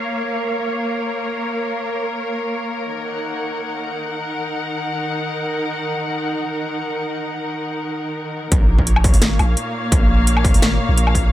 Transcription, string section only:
Already playing: A#3 A#4 C#5 F5
2.90 D#3
3.01 D#4 F#5
8.51 A#2
8.56 A#3
8.74 C#5
9.12 F5

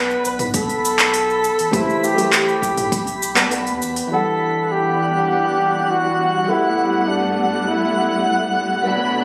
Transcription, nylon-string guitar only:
Already playing: B3 B4 D5 A5
1.71 A3 E4 G4 B4 C5
2.14 A3 E4 G4
2.21 C5
3.35 B3 B4 D5 A5
3.50 B3 B4 D5 A5
4.07 E3 G3 E4
4.12 D5 F#5
6.44 G3 G4 A4
6.49 B4 F#5
8.82 B3 B4 D5
8.88 A5

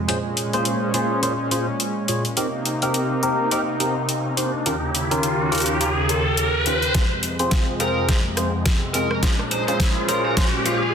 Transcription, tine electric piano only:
0.08 A#2 C#4 F4 G#4 C5
0.54 A#2 C#4 F4 G#4 C5
0.94 A#2 C#4 F4 G#4 C5
1.23 A#2 C#4 F4 G#4 C5
1.51 A#2 C#4 F4 G#4 C5
2.09 A#2 C#4 F4 G#4 C#5
2.37 C4 D#4 G4 A#4
2.82 C4 D#4 G4 A#4
3.23 C4 D#4 G4 A#4
3.52 C4 D#4 G4 A#4
3.80 C4 D#4 G4 A#4
4.37 C4 D#4 G4 C5
4.66 D#3 C#4 F4 G4 A#4
5.11 D#3 C#4 F4 G4 A#4
5.51 D#3 C#4 F4 G4 A#4
5.80 D#3 C#4 F4 G4 A#4
6.09 D#3 C#4 F4 G4 A#4
6.66 D#3 C#4 F4 G4 C5
6.95 C4 F4 G#4 C5
7.39 C4 F4 G#4 C5
7.80 C4 F4 G#4 C5
8.09 C4 F4 G#4 C5
8.37 C4 F4 G#4 C5
8.95 C4 F4 G#4 D#5
9.23 C#4 F4 G#4 C5
9.68 C#4 F4 G#4 C5
10.09 C#4 F4 G#4 C5
10.38 C#4 F4 G#4 C5
10.66 C#4 F4 G#4 C5

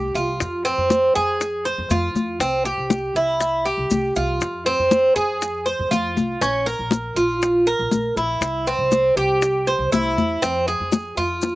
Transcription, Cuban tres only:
Already playing: G4
0.15 F4
0.65 C4
1.15 G#4
1.65 C5
1.91 F4
2.41 C4
2.65 G4
3.16 E4
3.65 G4
4.16 F4
4.66 C4
5.16 G#4
5.66 C5
5.91 F4
6.41 C#4
6.66 A#4
7.16 F4
7.67 A#4
8.17 E4
8.67 C4
9.17 G4
9.67 C5
9.92 E4
10.42 C4
10.68 G#4
11.17 F4

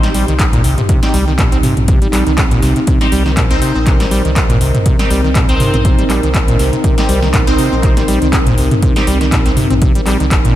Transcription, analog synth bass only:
Already playing: A#1
0.28 C2
0.64 C2
1.14 C2
1.52 C2
1.77 A#1
2.27 C2
2.63 C2
3.12 C2
3.51 C2
3.75 A#1
4.25 C2
4.61 C2
5.10 C2
5.49 C2
5.74 A#1
6.23 C2
6.59 C2
7.09 C2
7.47 C2
7.72 A#1
8.22 C2
8.58 C2
9.07 C2
9.46 C2
9.71 A#1
10.20 C2
10.31 G1

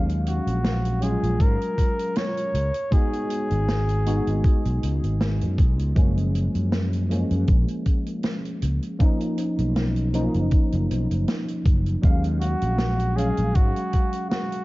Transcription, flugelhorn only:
0.28 F#4
1.03 G#4
1.42 A#4
2.17 C#5
2.93 G#4
12.41 F#4
13.16 G#4
13.55 F#4
14.30 F#4

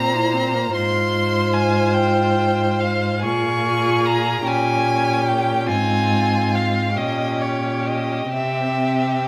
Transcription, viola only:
Already playing: C4
0.14 E4
0.34 C4
0.55 A#3
0.75 F4
3.24 F4
4.42 C#4
5.66 C4
6.97 C#4
8.31 C4

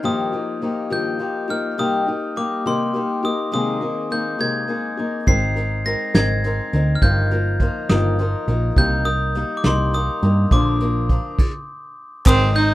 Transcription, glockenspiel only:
0.05 D#6
0.93 G6
1.50 F6
1.79 D#6
2.37 D6
2.67 C6
3.25 D#6
3.54 D#6
4.12 G6
4.41 G#6
5.28 C7
5.86 A#6
6.15 G#6
6.95 F6
7.03 G6
7.90 D#6
8.78 G6
9.05 D#6
9.57 D6
9.66 C6
9.94 D#6
10.52 D6
12.27 D#6
12.56 G6

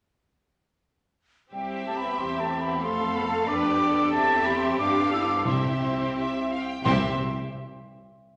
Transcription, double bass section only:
1.52 C2
2.17 E2
2.81 F2
3.48 F2
4.12 E2
4.77 G2
5.46 C2
6.85 C2

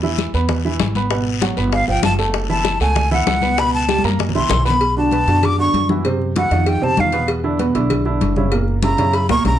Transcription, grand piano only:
0.03 E3 E4 E5
0.34 B3 B4 B5
0.65 E3 E4 E5
0.96 B3 B4 B5
1.10 B2 B3 B4
1.41 F#3 F#4 F#5
1.57 B3 B4 B5
1.88 F3 F4 F5
2.19 A3 A4 A5
2.49 E3 E4 E5
2.81 A3 A4 F#5
3.11 E3 E4 E5
3.42 B3 B4 B5
3.58 B2 B3 B4
3.88 G3 G4 G5
4.04 A#3 A#4 A#5
4.35 E3 E4 E5
4.65 B3 B4 B5
4.97 D3 D4 F#4
5.12 B2 B3 B4
5.28 D3 D4 F#4
5.59 D3 D4 F#4
5.89 E3 E4 F#4
6.05 C3 C4 C5
6.36 E3 E4 F#4
6.51 D#3 D#4 F4
6.82 C3 C4 C5
6.98 D#3 D#4 F4
7.13 B2 B3 B4
7.44 D3 D4 E4
7.59 B2 B3 B4
7.74 D3 D4 E4
8.05 D3 D4 E4
8.37 C#3 C#4 E4
8.52 A#2 A#3 A#4
8.83 C#3 C#4 E4
8.99 C#3 C#4 E4
9.30 A#2 A#3 A#4
9.45 C#3 C#4 E4

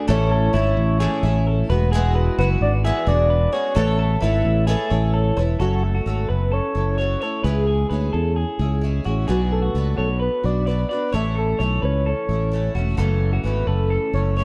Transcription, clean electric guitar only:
0.08 A4
0.31 A4
0.54 E4
1.00 G#4
1.47 A4
1.70 B4
1.92 G#4
2.15 B4
2.39 F#4
2.84 G#4
3.30 B4
3.53 G#4
3.76 A4
3.99 A4
4.22 E4
4.67 G#4
5.14 A4
5.37 B4
5.59 A4
5.95 F#4
6.29 B4
6.52 A4
6.98 C#5
7.21 C#5
7.44 B4
7.67 G#4
7.90 B4
8.13 A4
8.36 G#4
9.05 F#4
9.28 G#4
9.62 F#4
9.97 C#5
10.20 B4
10.66 D5
10.89 D5
11.13 C#5
11.35 A4
11.59 C#5
11.82 B4
12.06 A4
12.75 F#4
12.98 A4
13.33 F#4
13.67 B4
13.90 A4
14.37 C#5

